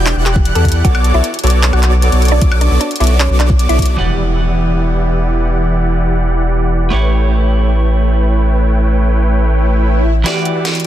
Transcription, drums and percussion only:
0.06 clap, closed hi-hat
0.26 clap, closed hi-hat
0.36 kick
0.45 closed hi-hat
0.55 closed hi-hat
0.65 kick, closed hi-hat
0.68 closed hi-hat
0.72 closed hi-hat
0.85 kick, closed hi-hat
0.95 high woodblock
1.04 closed hi-hat
1.24 closed hi-hat
1.34 closed hi-hat
1.39 closed hi-hat
1.44 closed hi-hat
1.47 closed hi-hat
1.50 closed hi-hat
1.63 clap, closed hi-hat
1.73 high woodblock
1.83 clap, closed hi-hat
2.02 closed hi-hat
2.12 closed hi-hat
2.22 closed hi-hat
2.25 closed hi-hat
2.28 closed hi-hat
2.41 kick, closed hi-hat
2.52 high woodblock
2.61 closed hi-hat
2.81 closed hi-hat
2.91 closed hi-hat
2.96 closed hi-hat
3.00 closed hi-hat
3.04 closed hi-hat
3.07 closed hi-hat
3.20 clap, closed hi-hat
3.40 clap, closed hi-hat
3.50 kick
3.59 closed hi-hat
3.69 closed hi-hat
3.79 kick, closed hi-hat
3.82 closed hi-hat
3.86 closed hi-hat
10.26 snare, closed hi-hat
10.45 closed hi-hat
10.65 snare, closed hi-hat
10.75 closed hi-hat
10.80 closed hi-hat

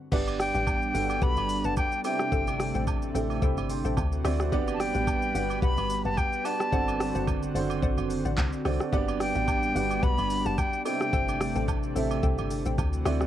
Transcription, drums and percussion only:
0.12 kick, crash, shaker
0.27 high agogo, shaker
0.40 cross-stick, open hi-hat, shaker
0.54 shaker
0.67 kick, high agogo, low woodblock, shaker
0.82 shaker
0.95 open hi-hat, shaker
1.10 high agogo, shaker
1.22 kick, shaker
1.37 high agogo, shaker
1.49 open hi-hat, shaker
1.64 shaker
1.77 kick, high agogo, low woodblock, shaker
1.92 shaker
2.04 open hi-hat, high agogo, shaker
2.19 cross-stick, shaker
2.32 kick, shaker
2.47 high agogo, shaker
2.60 cross-stick, open hi-hat, shaker
2.74 shaker
2.87 kick, high agogo, low woodblock, shaker
3.02 shaker
3.15 open hi-hat, shaker
3.30 high agogo, shaker
3.42 kick, shaker
3.57 high agogo, shaker
3.70 open hi-hat, shaker
3.85 shaker
3.97 kick, high agogo, low woodblock, shaker
4.12 shaker
4.25 cross-stick, open hi-hat, high agogo, shaker
4.40 cross-stick, shaker
4.52 kick, shaker
4.68 high agogo, shaker
4.80 cross-stick, open hi-hat, shaker
4.94 shaker
5.07 kick, high agogo, low woodblock, shaker
5.22 shaker
5.35 open hi-hat, shaker
5.50 high agogo, shaker
5.62 kick, shaker
5.77 high agogo, shaker
5.90 open hi-hat, shaker
6.05 shaker
6.17 kick, high agogo, low woodblock, shaker
6.33 shaker
6.45 open hi-hat, high agogo, shaker
6.60 cross-stick, shaker
6.73 kick, shaker
6.88 high agogo, shaker
7.00 cross-stick, open hi-hat, shaker
7.15 shaker
7.27 kick, high agogo, low woodblock, shaker
7.43 shaker
7.56 open hi-hat, shaker
7.70 high agogo, shaker
7.83 kick, shaker
7.98 high agogo, shaker
8.10 open hi-hat, shaker
8.25 shaker
8.37 kick, clap, high agogo, low woodblock, shaker
8.53 shaker
8.65 cross-stick, open hi-hat, high agogo, shaker
8.80 cross-stick, shaker
8.93 kick, shaker
9.08 high agogo, shaker
9.20 cross-stick, open hi-hat, shaker
9.35 shaker
9.48 kick, high agogo, low woodblock, shaker
9.63 shaker
9.76 open hi-hat, shaker
9.91 high agogo, shaker
10.03 kick, shaker
10.18 high agogo, shaker
10.30 open hi-hat, shaker
10.46 shaker
10.58 kick, high agogo, low woodblock, shaker
10.73 shaker
10.85 open hi-hat, high agogo, shaker
11.01 cross-stick, shaker
11.13 kick, shaker
11.29 high agogo, shaker
11.41 cross-stick, open hi-hat, shaker
11.55 shaker
11.68 kick, high agogo, low woodblock, shaker
11.83 shaker
11.96 open hi-hat, shaker
12.11 high agogo, shaker
12.23 kick, shaker
12.38 high agogo, shaker
12.50 open hi-hat, shaker
12.66 shaker
12.78 kick, high agogo, low woodblock, shaker
12.93 shaker
13.05 cross-stick, open hi-hat, high agogo, shaker
13.21 cross-stick, shaker

